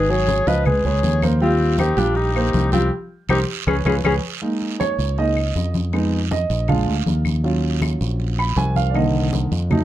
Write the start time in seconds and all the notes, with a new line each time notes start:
Already playing: G#1 G#4 B4
0.09 F#3 F#4 G#4 C#5, high conga
0.28 high conga, short guiro
0.47 C#2 F3 F4 B4 D#5 F5, high conga, short guiro
0.65 G#3 G#4 B4, high conga, low conga, long guiro, claves
0.84 C#2 G#3 G#4 B4 C#5, high conga, low conga
1.03 D#2, high conga, short guiro
1.22 A#3 A#4 C5, high conga, short guiro, claves
1.41 G3 C4 F4 G4 G5, high conga, long guiro
1.60 high conga
1.78 A#3 D#4 G4 A#4 C5, high conga, short guiro, claves
1.97 A#1 G3 D4 F4 G4 G5, high conga, short guiro
2.15 D#4 G4, high conga, long guiro
2.35 A#3 A#4 C5, high conga, claves
2.53 C2, high conga, short guiro
2.72 G3 C4 F4 G4 G5, high conga, short guiro
3.29 C2 D#4 G4 A#4 C5, high conga, long guiro, claves
3.67 C#2 C#4 G#4 B4 C#5, high conga, claves
3.85 C#2 C#4 G#4 B4 C#5, high conga, long guiro, claves
4.04 C#2 C#4 G#4 B4 C#5, high conga, long guiro, claves
4.41 G#3 A#3 D#4, high conga
4.62 high conga
4.80 C#5, high conga, short guiro, claves
4.98 C#2, high conga, short guiro
5.18 G#3 A#3 D#4 D#5, high conga, long guiro
5.37 high conga, claves
5.55 F2, high conga, short guiro
5.74 high conga, short guiro
5.93 G#3 B3 D#4, high conga, long guiro, claves
6.12 high conga
6.31 D#5, high conga, short guiro
6.50 A#1, high conga, short guiro
6.68 G#3 D4 F4 F5, high conga, low conga, long guiro, claves
6.87 D2, high conga
7.06 D#2, high conga, short guiro
7.25 high conga, short guiro, claves
7.44 F#3 C#4 F4, high conga, long guiro
7.63 high conga
7.82 high conga, short guiro, claves
8.01 A#1, high conga, short guiro
8.20 high conga, long guiro
8.38 B5, high conga, claves
8.56 C2 G#5, high conga, short guiro
8.76 F5, high conga, short guiro
8.90 D#3 D5
8.94 D3 A#3 D#5, high conga, long guiro, claves
9.14 high conga
9.33 high conga, short guiro
9.51 F2, high conga, short guiro
9.70 F#3 A3 D#4, high conga, low conga, long guiro, claves